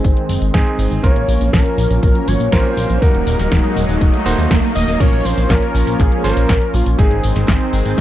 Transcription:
Already playing: analog synth pad D#3 G#3 C4, electric grand piano G#3 C4 D#4 G#4, riser
0.04 analog synth bass G#1, kick, closed hi-hat, tambourine
0.17 closed hi-hat
0.29 analog synth bass F#1, open hi-hat, tambourine
0.41 analog synth bass G#1, closed hi-hat, tambourine
0.54 analog synth bass G#1, electric grand piano G#3 C4 D#4 G#4, kick, snare, closed hi-hat, tambourine
0.67 closed hi-hat
0.78 analog synth bass G#1, open hi-hat, tambourine
0.91 analog synth bass G#1, closed hi-hat, tambourine
1.03 analog synth bass A#1, analog synth pad F3 A#3 C#4, electric grand piano A#3 C#4 F4 A#4, analog synth lead C#5, kick, closed hi-hat, tambourine
1.16 analog synth bass A#1, closed hi-hat
1.28 analog synth bass A#1, open hi-hat, tambourine
1.41 analog synth bass A#1, closed hi-hat, tambourine
1.53 analog synth bass A#1, analog synth lead A#4, kick, snare, closed hi-hat, tambourine
1.66 closed hi-hat
1.78 analog synth bass A#1, open hi-hat, tambourine
1.90 analog synth bass A#1, closed hi-hat, tambourine
2.03 analog synth bass A#1, analog synth lead A#4, kick, closed hi-hat, tambourine
2.15 closed hi-hat
2.27 analog synth bass G#1, analog synth lead C#5, open hi-hat, tambourine
2.40 analog synth bass A#1, closed hi-hat, tambourine
2.52 analog synth bass A#1, electric grand piano A#3 C#4 F4 A#4, analog synth lead C5, kick, snare, closed hi-hat, tambourine
2.65 closed hi-hat
2.77 analog synth bass A#1, open hi-hat, tambourine
2.89 analog synth bass A#1, closed hi-hat, tambourine
3.02 analog synth bass D#1, analog synth pad F#3 D#4, electric grand piano A#3 D#4 F#4 A#4, analog synth lead A#4, kick, closed hi-hat, tambourine
3.14 analog synth bass D#1, closed hi-hat
3.27 analog synth bass D#1, open hi-hat, tambourine
3.39 analog synth bass D#1, snare, closed hi-hat, tambourine
3.51 analog synth bass D#1, kick, snare, closed hi-hat, tambourine
3.64 closed hi-hat
3.76 analog synth bass D#1, open hi-hat, tambourine
3.88 analog synth bass D#1, closed hi-hat, tambourine
4.01 analog synth bass D#1, kick, closed hi-hat, tambourine, swell
4.14 closed hi-hat
4.26 analog synth bass D#1, electric grand piano A#3 D#4 F#4 C5, open hi-hat, tambourine
4.38 analog synth bass D#2, closed hi-hat, tambourine
4.51 analog synth bass D#1, kick, snare, closed hi-hat, tambourine
4.63 closed hi-hat
4.75 analog synth bass D#1, analog synth lead D#5, open hi-hat, tambourine
4.88 analog synth bass D#1, closed hi-hat, tambourine
5.00 analog synth bass A#1, analog synth pad F3 A#3 C#4, electric grand piano A#3 C#4 F4 A#4, analog synth lead C#5, kick, closed hi-hat, crash, tambourine
5.12 analog synth bass A#1, closed hi-hat
5.25 analog synth bass A#1, analog synth lead C5, open hi-hat, tambourine
5.37 analog synth bass A#1, closed hi-hat, tambourine
5.50 analog synth bass A#1, analog synth lead A#4, kick, snare, clap, closed hi-hat, tambourine
5.62 closed hi-hat
5.74 analog synth bass A#1, open hi-hat, tambourine
5.87 analog synth bass A#1, closed hi-hat, tambourine
5.99 analog synth bass A#1, analog synth lead G#4, kick, clap, closed hi-hat, tambourine
6.12 closed hi-hat
6.24 analog synth bass G#1, electric grand piano A#3 C#4 F4 C5, analog synth lead A#4, open hi-hat, tambourine
6.37 analog synth bass A#1, closed hi-hat, tambourine
6.49 analog synth bass A#1, kick, snare, clap, closed hi-hat, tambourine
6.62 closed hi-hat
6.74 analog synth bass A#1, analog synth lead F4, open hi-hat, tambourine
6.86 analog synth bass A#1, closed hi-hat, tambourine
6.98 analog synth bass G#1, analog synth pad D#3 G#3 C4, electric grand piano G#3 C4 D#4 G#4, analog synth lead G#4, kick, closed hi-hat, tambourine
7.11 analog synth bass G#1, closed hi-hat
7.24 analog synth bass G#1, open hi-hat, tambourine
7.36 analog synth bass G#1, snare, closed hi-hat, tambourine
7.48 analog synth bass G#1, kick, snare, clap, closed hi-hat, tambourine
7.61 closed hi-hat
7.73 analog synth bass G#1, open hi-hat, tambourine
7.85 analog synth bass G#1, closed hi-hat, tambourine
7.98 analog synth bass G#1

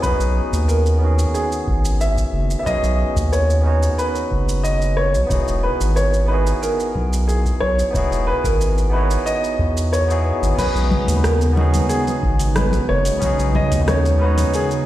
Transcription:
0.00 analog synth bass B1, tine electric piano B3 C#4 D#4, grand piano B4, kick, shaker
0.06 tine electric piano F#4 G#4
0.19 analog synth bass B1, shaker
0.53 analog synth bass D#2, shaker
0.68 grand piano A#4, shaker
0.86 shaker
0.99 tine electric piano B3 C#4
1.03 tine electric piano D#3 F#4 G#4
1.19 shaker
1.34 grand piano G#4, shaker
1.52 shaker
1.68 analog synth bass G#1, kick
1.85 shaker
2.01 grand piano E5, shaker
2.18 kick, shaker
2.33 analog synth bass F#1
2.51 shaker
2.59 tine electric piano B3, grand piano E5
2.65 analog synth bass B1, tine electric piano C#4 D#4, grand piano D#5, kick, shaker
2.69 tine electric piano F#4 G#4
2.83 analog synth bass B1, shaker
3.16 analog synth bass D#2, kick, shaker
3.33 grand piano C#5, shaker
3.50 shaker
3.61 tine electric piano B3 C#4 D#4
3.67 tine electric piano F#4 C#5
3.83 shaker
3.98 grand piano B4, shaker
4.16 shaker
4.31 analog synth bass F#1, kick
4.49 shaker
4.64 grand piano D#5, shaker
4.82 shaker
4.97 grand piano C#5
5.15 analog synth bass B1, shaker
5.27 analog synth bass E1, tine electric piano B3 D#4 E4, kick
5.31 tine electric piano F#4 G#4, shaker
5.48 analog synth bass E1, shaker
5.63 grand piano B4
5.81 analog synth bass G#1, shaker
5.96 grand piano C#5, shaker
6.14 shaker
6.26 tine electric piano B3 D#4, grand piano B4
6.30 tine electric piano E4 F#4 G#4
6.47 shaker
6.62 grand piano A#4, shaker
6.80 shaker
6.95 analog synth bass B1, kick
7.13 shaker
7.28 grand piano G#4, shaker
7.45 kick, shaker
7.60 analog synth bass B1, grand piano C#5
7.79 shaker
7.91 analog synth bass E1, tine electric piano B3 D#4 E4, kick
7.95 tine electric piano F#4 G#4, shaker
8.12 analog synth bass E1, shaker
8.27 grand piano B4
8.44 analog synth bass G#1, grand piano A#4, kick, shaker
8.61 shaker
8.78 shaker
8.90 tine electric piano B3 D#4 E4, grand piano B4
8.96 tine electric piano F#4 C#5
9.11 shaker
9.26 grand piano D#5, shaker
9.44 shaker
9.59 analog synth bass E2, kick
9.77 shaker
9.93 grand piano C#5, shaker
10.08 tine electric piano B3 D#4 E4 F#4, shaker
10.12 tine electric piano G#4
10.42 analog synth bass G#1, shaker
10.55 analog synth bass B1, analog synth pad C#3 G#3 D#4, tine electric piano B3 C#4, grand piano B4, kick, open hi-hat, crash
10.59 analog synth pad B3, tine electric piano D#4 F#4 G#4, shaker
10.75 analog synth bass B1, shaker
10.91 muted conga, high conga
11.08 analog synth bass D#2, open hi-hat, shaker
11.16 grand piano B4
11.24 grand piano A#4, cross-stick, open hi-hat, shaker
11.41 shaker
11.53 tine electric piano B3 C#4
11.57 tine electric piano D#4 F#4 G#4, muted conga
11.74 open hi-hat, high conga, shaker
11.89 grand piano G#4, open hi-hat, shaker
12.07 muted conga, shaker
12.23 analog synth bass G#1, kick
12.39 open hi-hat, shaker
12.56 grand piano B4, cross-stick, open hi-hat, high conga, shaker
12.73 kick, muted conga, shaker
12.89 analog synth bass F#1, grand piano C#5
13.05 open hi-hat, shaker
13.19 analog synth bass B1, tine electric piano B3 C#4 D#4, analog synth pad C#4, kick, open hi-hat, muted conga, shaker
13.24 tine electric piano F#4 G#4
13.39 analog synth bass B1, shaker
13.55 grand piano D#5, high conga
13.72 analog synth bass D#2, kick, open hi-hat, shaker
13.81 grand piano D#5
13.88 grand piano C#5, cross-stick, open hi-hat, muted conga, shaker
14.05 shaker
14.18 tine electric piano B3 C#4 D#4, grand piano B4
14.23 tine electric piano F#4 C#5
14.38 open hi-hat, muted conga, high conga, shaker
14.54 grand piano G#4, open hi-hat, shaker
14.71 shaker

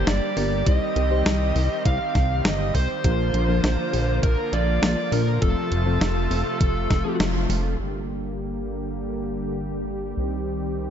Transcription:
Already playing: supersaw synth D3 G3 A#3 G4, fm electric piano G3 A#3 D4 G4 A#4
0.07 analog synth bass G1, lead electric guitar D5, snare, closed hi-hat
0.37 analog synth bass G1, fm electric piano G3 A#3 D4 G4 A#4, lead electric guitar D5, open hi-hat
0.66 analog synth bass C2, supersaw synth D#3 C4, fm electric piano G3 C4 D#4 G4 C5, lead electric guitar D#5, kick, closed hi-hat
0.96 analog synth bass C2, closed hi-hat
1.11 fm electric piano G3 C4 D#4 G4 C5
1.26 analog synth bass C2, snare, closed hi-hat
1.56 analog synth bass C2, open hi-hat
1.85 analog synth bass C2, lead electric guitar F5, kick, closed hi-hat
2.15 analog synth bass C2, kick, snare, closed hi-hat
2.45 analog synth bass G1, lead electric guitar D#5, snare, closed hi-hat
2.75 analog synth bass C2, lead electric guitar C5, kick, open hi-hat
3.04 analog synth bass A#1, supersaw synth D3 F3 A#3 F4, fm electric piano F3 A#3 D4 F4 A#4, kick, closed hi-hat
3.34 analog synth bass A#1, closed hi-hat
3.49 fm electric piano F3 A#3 D4 F4 A#4
3.64 analog synth bass A#1, snare, closed hi-hat
3.93 analog synth bass A#1, open hi-hat
4.23 analog synth bass A#1, lead electric guitar A#4, kick, closed hi-hat
4.52 analog synth bass A#1, lead electric guitar D5, closed hi-hat
4.82 analog synth bass A#1, lead electric guitar D5, snare, closed hi-hat
5.12 analog synth bass A#1, fm electric piano F3 A#3 D4 F4 A#4, lead electric guitar A#4, open hi-hat
5.42 analog synth bass F1, supersaw synth C3 A3 F4, fm electric piano F3 A3 C4 F4 A4, lead electric guitar A4, kick, closed hi-hat
5.71 analog synth bass F1, closed hi-hat
5.86 fm electric piano F3 A3 C4 F4 A4
6.01 analog synth bass F1, snare, closed hi-hat
6.31 analog synth bass F1, open hi-hat
6.61 analog synth bass F1, kick, closed hi-hat
6.90 analog synth bass F1, kick, snare, closed hi-hat
7.05 fm electric piano F3 A3 C4 F4 A4
7.20 analog synth bass F1, snare, closed hi-hat
7.49 analog synth bass F1, open hi-hat
7.79 supersaw synth D3 G3 A#3 G4
10.17 analog synth bass C2, supersaw synth D#3 C4

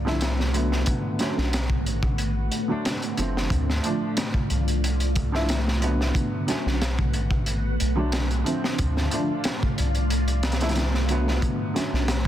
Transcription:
Already playing: sub bass C2, string machine A3 F4 D5 F5
0.05 upright piano D3 F3 A3 E4, snare
0.21 snare, closed hi-hat
0.40 snare
0.53 upright piano D3 F#3 A3 B3, closed hi-hat
0.72 snare
0.86 string machine B4 F#5, kick, closed hi-hat
1.19 upright piano D3 F#3 A3 C#4, snare, closed hi-hat
1.38 sub bass B1, snare
1.53 snare, closed hi-hat
1.70 kick
1.86 sub bass A1, closed hi-hat
2.03 kick
2.18 closed hi-hat
2.52 closed hi-hat
2.68 upright piano D3 F#3 A3 D4
2.85 snare, closed hi-hat
3.02 closed hi-hat
3.17 sub bass F#1, upright piano D3 F3 A3 C4, closed hi-hat
3.37 snare
3.50 sub bass D2, string machine F4 D5 F5, kick, closed hi-hat
3.70 snare
3.83 upright piano D3 F3 A3 D4, closed hi-hat
4.17 snare, closed hi-hat
4.34 kick
4.50 sub bass C2, closed hi-hat
4.68 closed hi-hat
4.84 closed hi-hat
5.00 closed hi-hat
5.15 kick, closed hi-hat
5.32 upright piano D3 F3 A3 E4, snare
5.49 snare, closed hi-hat
5.68 snare
5.81 upright piano D3 F#3 A3 B3, closed hi-hat
6.01 snare
6.15 string machine B4 F#5, kick, closed hi-hat
6.46 upright piano D3 F#3 A3 C#4, snare, closed hi-hat
6.66 sub bass B1, snare
6.82 snare, closed hi-hat
6.99 kick
7.14 sub bass A1, closed hi-hat
7.31 kick
7.46 closed hi-hat
7.80 sub bass B1, closed hi-hat
7.95 upright piano D3 F#3 A3 D4
8.12 snare, closed hi-hat
8.31 closed hi-hat
8.44 upright piano D3 F3 A3 C4, closed hi-hat
8.64 snare
8.78 sub bass D2, string machine A3 F4 D5 F5, kick, closed hi-hat
8.97 snare
9.11 upright piano D3 F3 A3 D4, closed hi-hat
9.44 snare, closed hi-hat
9.63 kick
9.78 sub bass C2, closed hi-hat
9.95 closed hi-hat
10.10 closed hi-hat
10.28 closed hi-hat
10.43 snare, closed hi-hat
10.52 snare, closed hi-hat
10.60 upright piano D3 F3 A3 E4, snare, closed hi-hat
10.69 snare, closed hi-hat
10.75 snare, closed hi-hat
10.94 snare
11.09 upright piano D3 F#3 A3 B3, closed hi-hat
11.28 snare
11.42 string machine B4 F#5, kick, closed hi-hat
11.74 upright piano D3 F#3 A3 C#4, snare, closed hi-hat
11.93 sub bass B1, snare
12.08 snare, closed hi-hat

